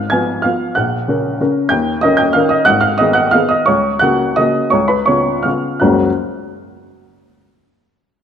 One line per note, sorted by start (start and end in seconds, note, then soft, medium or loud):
0.00 0.10 G#1 medium
0.00 0.44 F5 medium
0.00 0.42 F6 medium
0.10 0.42 F3 soft
0.10 0.42 B3 soft
0.10 0.42 B4 soft
0.10 0.42 G#5 medium
0.10 0.44 G#6 medium
0.42 0.73 F3 soft
0.42 0.74 B3 soft
0.42 0.74 B4 soft
0.42 0.74 F5 medium
0.42 0.75 F6 medium
0.75 1.07 A#1 medium
0.75 1.35 F#5 medium
0.75 1.39 F#6 medium
1.08 1.36 C#3 soft
1.08 1.37 C#4 soft
1.08 1.37 A#4 soft
1.41 1.69 C#3 soft
1.41 1.69 C#4 soft
1.41 1.69 A#4 soft
1.69 2.03 D#2 medium
1.69 2.01 G5 medium
1.69 2.02 G6 medium
2.01 2.33 D#3 soft
2.01 2.33 C#4 soft
2.01 2.34 A#4 medium
2.01 2.18 D#5 medium
2.01 2.19 D#6 medium
2.17 2.34 G5 medium
2.17 2.35 G6 medium
2.33 2.65 D#3 soft
2.33 2.65 C#4 soft
2.33 2.65 A#4 medium
2.33 2.50 F5 medium
2.33 2.51 F6 medium
2.49 2.66 D#5 medium
2.49 2.67 D#6 medium
2.65 2.99 G#1 medium
2.65 2.81 F#5 medium
2.65 2.82 F#6 loud
2.81 2.98 F5 medium
2.81 2.99 F6 medium
2.98 3.31 D#3 soft
2.98 3.32 B3 soft
2.98 3.32 G#4 soft
2.98 3.15 D#5 medium
2.98 3.16 D#6 medium
3.13 3.32 F#5 medium
3.13 3.33 F#6 medium
3.31 3.64 D#3 soft
3.31 3.65 B3 soft
3.31 3.65 G#4 soft
3.31 3.50 F5 medium
3.31 3.50 F6 medium
3.49 3.66 D#5 medium
3.49 3.67 D#6 medium
3.66 4.01 C#2 medium
3.66 3.99 C#5 medium
3.66 4.01 C#6 medium
3.99 4.34 C#3 soft
3.99 4.34 A#3 soft
3.99 4.35 F#4 medium
3.99 4.35 F#5 medium
3.99 4.36 F#6 medium
4.36 4.69 C#3 soft
4.36 4.69 A#3 soft
4.36 4.70 F#4 soft
4.36 4.70 D#5 medium
4.36 4.72 D#6 medium
4.70 5.07 C#2 medium
4.70 4.88 C#5 medium
4.70 4.89 C#6 medium
4.88 5.06 B4 medium
4.88 5.07 B5 medium
5.06 5.42 C#3 soft
5.06 5.42 B3 soft
5.06 5.42 F4 soft
5.06 5.42 C#5 medium
5.06 5.44 C#6 medium
5.43 5.79 C#3 soft
5.43 5.79 B3 soft
5.43 5.80 F4 soft
5.43 5.80 F5 soft
5.43 5.82 F6 medium
5.80 6.01 F#1 medium
5.80 6.01 C#2 medium
5.80 6.01 F#3 medium
5.80 6.01 A#3 medium
5.80 6.02 C#4 medium
5.80 6.02 F#4 medium
5.80 6.00 F#6 medium